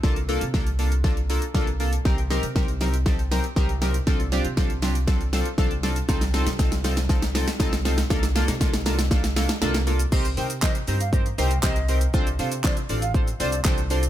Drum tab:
CC |----------------|----------------|----------------|----------------|
HH |-xox-xox-xox-xox|-xox-xox-xox-xox|-xox-xox-xox-xox|-xox-xox-xox-xox|
SH |----------------|----------------|----------------|xxxxxxxxxxxxxxxx|
CP |----------------|----------------|----------------|----------------|
SD |o---o---o---o---|o-o-o-o-o-o-o-o-|o-o-o-o-o-o-o-o-|oooooooooooooooo|
BD |o---o---o---o---|o---o---o---o---|o---o---o---o---|o---o---o---o---|

CC |----------------|x---------------|----------------|
HH |-xox-xox-xox-xox|-xox-xox-xox-xox|-xox-xox-xox-xox|
SH |xxxxxxxxxxxxxxxx|xxxxxxxxxxxxxxxx|xxxxxxxxxxxxxxxx|
CP |----------------|----x-------x---|----x-------x---|
SD |oooooooooooooo--|----o-------o---|----o-------o---|
BD |o---o---o-------|o---o---o---o---|o---o---o---o---|